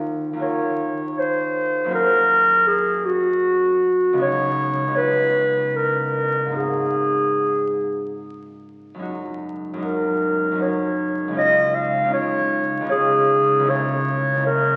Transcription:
0.00 0.32 D#2 soft
0.00 0.34 A#3 soft
0.00 1.08 C#4 soft
0.00 0.36 F4 soft
0.00 0.38 F#4 soft
0.00 0.40 A#4 soft
0.33 1.93 D#2 soft
0.33 1.85 A#3 soft
0.33 1.95 F4 soft
0.39 1.89 F#4 soft
0.39 4.26 A#4 soft
0.39 1.20 C#5 medium
1.19 1.93 C5 medium
1.84 4.21 F#2 soft
1.84 4.22 A#3 soft
1.88 4.16 C#4 soft
1.88 4.20 F#4 soft
1.88 5.82 G#4 soft
1.94 2.69 A#4 medium
2.67 3.07 G#4 medium
3.05 4.21 F#4 medium
4.13 4.86 C#2 soft
4.13 4.89 B3 soft
4.13 4.90 C#4 soft
4.19 4.93 D#4 soft
4.19 4.94 F#4 soft
4.19 4.96 C#5 medium
4.88 6.54 C#2 soft
4.88 6.55 B3 soft
4.88 6.56 C#4 soft
4.94 6.51 D#4 soft
4.94 6.53 F#4 soft
4.94 5.78 B4 medium
5.76 6.56 A#4 medium
6.46 9.02 G#2 soft
6.46 10.38 A#3 soft
6.50 9.05 C4 soft
6.50 8.99 D#4 soft
6.50 9.01 F#4 soft
6.56 8.19 G#4 medium
8.94 9.72 F#2 soft
8.94 9.75 G#3 soft
8.99 9.76 C#4 soft
8.99 9.78 D#4 soft
8.99 9.80 F#4 soft
9.73 10.50 F#2 soft
9.73 10.52 G#3 soft
9.77 10.54 C#4 soft
9.77 10.57 D#4 soft
9.82 10.58 F#4 soft
9.82 10.64 A#4 medium
10.52 11.35 F#2 soft
10.52 11.29 G#3 soft
10.52 11.31 C#4 soft
10.58 11.33 D#4 soft
10.58 11.39 F#4 soft
10.62 11.37 C#5 medium
11.28 12.03 C#2 soft
11.28 12.05 G#3 soft
11.32 12.07 C#4 soft
11.32 12.08 D#4 soft
11.37 12.10 F4 soft
11.37 11.76 D#5 medium
11.75 12.13 F5 medium
12.04 12.79 C#2 soft
12.04 12.81 G#3 soft
12.08 12.83 C#4 soft
12.08 12.85 D#4 soft
12.08 12.87 F4 soft
12.13 12.89 C#5 medium
12.81 13.58 C#2 soft
12.81 14.76 G#3 soft
12.81 13.62 C#4 soft
12.86 13.71 D#4 soft
12.86 13.72 F4 soft
12.91 13.71 G#4 medium
13.59 14.34 C#2 soft
13.59 14.36 A#3 soft
13.63 14.38 C#4 soft
13.63 14.40 E4 soft
13.63 14.42 G#4 soft
13.70 14.46 C#5 medium
14.35 14.76 C#2 soft
14.35 14.76 A#3 soft
14.35 14.76 C#4 soft
14.41 14.76 E4 soft
14.41 14.76 G#4 soft
14.46 14.76 A#4 medium

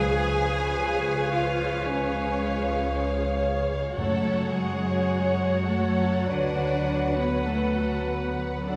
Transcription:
0.00 3.94 C#2 medium
0.00 1.30 C#3 medium
0.00 1.85 C#3 medium
0.00 3.68 F3 medium
0.00 1.58 G#3 soft
0.00 3.82 F4 medium
0.00 0.81 G#4 soft
0.00 1.29 G#4 medium
0.00 3.94 G#4 medium
0.00 1.57 B4 medium
0.00 3.72 B4 medium
0.00 3.82 B4 medium
0.00 3.94 C#5 medium
0.00 3.94 F5 medium
0.00 1.30 G#5 medium
0.30 1.32 C#4 soft
0.56 1.06 F4 soft
0.82 2.92 G#4 soft
1.08 2.65 F4 soft
1.34 2.12 C#4 soft
1.34 1.86 F4 medium
1.34 1.87 F5 medium
1.60 2.39 G#3 soft
1.86 4.02 C#3 soft
1.86 3.45 C#4 medium
1.86 3.45 C#5 medium
1.86 2.38 G#5 medium
2.13 3.45 C#4 soft
2.39 3.72 G#3 soft
2.39 2.91 F5 medium
2.66 3.19 F4 soft
2.92 4.03 G#4 medium
2.92 3.98 C#5 medium
3.20 4.03 F4 soft
3.46 4.78 C#4 soft
3.73 4.03 G#3 soft
3.97 5.62 F#2 medium
3.97 6.30 F#2 medium
3.97 6.35 F#2 medium
3.97 8.65 F#3 medium
3.97 4.47 A3 medium
3.97 8.68 F#4 medium
3.97 6.26 F#4 soft
3.97 4.47 A4 medium
3.97 6.31 C#5 medium
3.97 6.26 C#5 medium
3.97 7.44 C#5 medium
3.97 6.26 C#5 medium
3.97 8.64 F#5 medium
4.26 5.98 C#3 soft
4.50 5.67 F#3 soft
4.50 5.67 G#3 medium
4.50 5.66 G#4 medium
4.79 5.35 C#4 soft
5.07 7.18 F#4 soft
5.36 6.35 C#4 soft
5.66 6.59 F#3 soft
5.66 6.30 A3 medium
5.66 6.29 A4 medium
6.00 6.35 C#3 soft
6.29 8.68 D2 medium
6.29 8.74 D3 medium
6.29 7.16 D4 medium
6.29 8.64 F#4 medium
6.29 8.70 B4 soft
6.29 8.68 B4 soft
6.29 8.68 B4 medium
6.29 7.17 D5 medium
6.61 8.37 F#3 soft
6.90 7.47 B3 soft
7.18 7.47 B3 medium
7.18 7.76 F#4 soft
7.18 7.47 B4 medium
7.46 8.07 A3 medium
7.46 8.06 B3 soft
7.46 8.06 A4 medium
7.46 8.68 B4 medium
7.77 8.76 F#4 soft
8.06 8.67 B3 medium
8.06 8.73 B3 soft
8.06 8.68 B4 medium
8.38 8.76 F#3 soft
8.68 8.76 C#2 soft
8.68 8.76 C#3 soft
8.68 8.76 F#3 soft
8.68 8.76 D4 medium
8.68 8.76 F#4 soft
8.68 8.76 A4 soft
8.68 8.76 D5 medium
8.68 8.76 F#5 soft

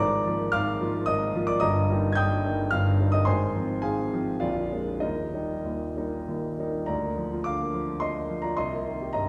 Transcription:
0.00 0.25 G#1 medium
0.00 0.25 G#2 medium
0.00 0.49 D5 medium
0.00 0.49 A#5 medium
0.00 0.51 D6 loud
0.27 0.51 F3 medium
0.27 0.52 A#3 medium
0.27 0.52 F4 medium
0.52 0.81 G#1 medium
0.52 0.81 G#2 medium
0.52 1.04 F5 medium
0.52 1.04 D6 medium
0.52 1.07 F6 loud
0.81 1.05 F3 medium
0.81 1.06 A#3 medium
0.81 1.06 F4 medium
1.06 1.35 G#1 medium
1.06 1.34 G#2 medium
1.06 1.45 D#5 medium
1.06 1.48 D#6 loud
1.36 1.60 F3 medium
1.36 1.60 A#3 medium
1.36 1.60 F4 medium
1.47 1.61 D5 medium
1.47 1.61 D6 loud
1.60 1.89 G1 medium
1.60 1.89 G2 medium
1.60 2.07 D#5 medium
1.60 2.07 A#5 medium
1.60 2.10 D#6 loud
1.91 2.16 G3 medium
1.91 2.16 A#3 medium
1.91 2.16 D#4 medium
2.12 2.72 G6 loud
2.12 2.19 G#6 medium
2.17 2.45 G1 medium
2.17 2.45 G2 medium
2.17 2.69 G5 medium
2.17 2.69 D#6 medium
2.46 2.71 G3 medium
2.46 2.71 A#3 medium
2.46 2.71 D#4 medium
2.71 3.00 G1 medium
2.71 3.00 G2 medium
2.71 3.11 F5 medium
2.71 3.13 F6 loud
3.01 3.26 G3 medium
3.01 3.26 A#3 medium
3.01 3.26 D#4 medium
3.12 3.27 D#5 medium
3.12 3.27 D#6 loud
3.25 3.55 G#1 medium
3.25 3.55 G#2 medium
3.25 3.79 C5 medium
3.25 3.79 G#5 medium
3.25 3.82 C6 loud
3.56 3.81 F3 medium
3.56 3.81 C4 medium
3.56 3.82 F4 medium
3.82 4.12 G#1 medium
3.82 4.12 G#2 medium
3.82 4.38 G#4 medium
3.82 4.38 F5 medium
3.82 4.41 G#5 medium
4.13 4.40 F3 medium
4.13 4.40 C4 medium
4.13 4.39 F4 medium
4.40 4.72 A#0 medium
4.40 4.71 A#1 medium
4.40 4.99 F4 medium
4.40 4.99 D5 medium
4.40 5.02 F5 medium
4.72 5.00 G#3 medium
4.72 5.00 A#3 medium
4.72 5.00 D4 medium
5.00 5.33 D#1 medium
5.00 5.33 D#2 medium
5.00 5.33 D#4 medium
5.00 6.53 A#4 medium
5.00 6.57 D#5 medium
5.34 5.62 G3 soft
5.34 5.62 A#3 soft
5.34 5.62 D#4 medium
5.65 5.95 D#1 medium
5.65 5.95 D#2 medium
5.97 6.25 G3 soft
5.97 6.25 A#3 soft
5.97 6.25 D#4 medium
6.28 6.58 D#1 medium
6.28 6.58 D#2 medium
6.59 6.86 G3 soft
6.59 6.86 A#3 medium
6.59 6.86 D#4 medium
6.86 8.54 D2 medium
6.86 7.42 D5 medium
6.86 7.45 A#5 medium
7.03 7.26 A#3 medium
7.18 7.40 F3 soft
7.33 7.55 F4 medium
7.44 7.69 D3 soft
7.44 7.97 F5 medium
7.44 8.01 D6 loud
7.61 7.83 A#3 medium
7.74 7.96 F3 medium
7.88 8.32 F4 soft
8.00 8.40 D#5 medium
8.00 8.43 C6 medium
8.16 8.38 A#3 soft
8.31 8.52 F3 soft
8.42 8.58 F4 medium
8.42 8.56 D5 medium
8.42 8.57 A#5 medium
8.57 9.29 C2 medium
8.57 9.09 D#5 medium
8.57 9.13 C6 medium
8.73 8.94 A#3 soft
8.87 9.08 D#3 medium
9.02 9.23 G4 soft
9.13 9.29 G2 medium
9.13 9.29 D#5 medium
9.13 9.29 A#5 medium

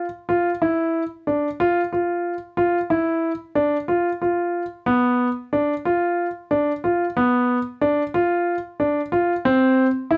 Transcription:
0.29 0.49 F4 medium
0.62 1.02 E4 medium
1.27 1.47 D4 medium
1.60 1.80 F4 medium
1.93 2.33 F4 medium
2.57 2.78 F4 medium
2.90 3.31 E4 medium
3.55 3.76 D4 medium
3.88 4.09 F4 medium
4.22 4.62 F4 medium
4.86 5.27 B3 medium
5.53 5.73 D4 medium
5.85 6.26 F4 medium
6.51 6.71 D4 medium
6.84 7.04 F4 medium
7.17 7.57 B3 medium
7.81 8.02 D4 medium
8.14 8.55 F4 medium
8.80 9.00 D4 medium
9.12 9.32 F4 medium
9.45 9.85 C4 medium
10.11 10.17 E4 medium

